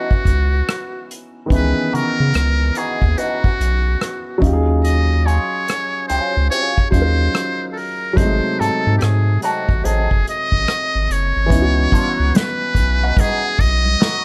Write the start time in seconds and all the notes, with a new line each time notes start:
Already playing: E3 B3 C#4 D#4 F#4
0.11 kick
0.25 C#2, kick, closed hi-hat
0.69 cross-stick, closed hi-hat
1.11 closed hi-hat
1.46 D#3 B3
1.50 C#2 E3 C#4 D#4 B4, kick, closed hi-hat
1.55 G#4
1.93 C#3 E3 B3 D#4 F#4 A#4, closed hi-hat
2.20 C#3
2.34 C#2, muted clean electric guitar stroke, cross-stick, closed hi-hat
2.75 E3 B3 D#4 F#4 G#4, closed hi-hat
3.02 D#2, kick
3.18 E3 B3 D#4 F#4, closed hi-hat
3.44 B1, kick
3.60 B1, closed hi-hat
4.01 cross-stick, closed hi-hat
4.38 F#3 C#4, kick
4.42 D#2 D#4 F4, closed hi-hat
4.47 G4
4.53 G#4
4.84 D#5, closed hi-hat
5.26 F#3 C#4 F4 G#4 C#5, closed hi-hat
5.68 muted clean electric guitar stroke, cross-stick, closed hi-hat
6.08 C#2 F#3 C#4 F4 G#4 C5, closed hi-hat
6.37 C#2
6.50 F#3 C#4 F4 G#4 C#5, closed hi-hat
6.78 kick
6.91 D#2 F#3 C#4 D#4 F4 C5, kick, closed hi-hat
6.95 G#4
7.02 A#4
7.35 cross-stick, closed hi-hat
7.73 A4 A#4
7.77 open hi-hat
8.13 F#3 A3 C5, kick
8.18 G#1 C3 D#4, closed hi-hat
8.22 G#3
8.60 G#2 F#3 C4 D#4 A4, closed hi-hat
8.87 G#2
8.98 G4 G#4, closed hi-hat
9.02 G#2, cross-stick
9.42 F#3 C4 D#4 F#4 A4, closed hi-hat
9.69 G#1, kick
9.84 A1 F#3 C4 D#4 G#4 A4, closed hi-hat
10.11 F#1, kick
10.27 D#5, closed hi-hat
10.52 A1, kick
10.68 cross-stick, closed hi-hat
10.95 G#1
11.10 F#1 C#5, closed hi-hat
11.37 G#1
11.46 E3 B3, kick
11.51 C#2 C#4 D#4, closed hi-hat
11.55 E4
11.62 F#4
11.92 D#3 A#3 D4 F4, kick, closed hi-hat, high conga
12.09 E3 B3 D#4 F#4
12.20 C#2
12.34 B4, snare, closed hi-hat, muted conga, high conga
12.61 muted conga
12.75 B1, kick, closed hi-hat, low conga
13.04 E3 B3 D#4 F#4
13.17 E3 B3 D#4 F#4 G#4, kick, closed hi-hat, muted conga, high conga, low conga
13.59 B1 D#5, kick, closed hi-hat
13.86 high conga
14.00 E3 B3 D#4 F#4, snare, closed hi-hat, muted conga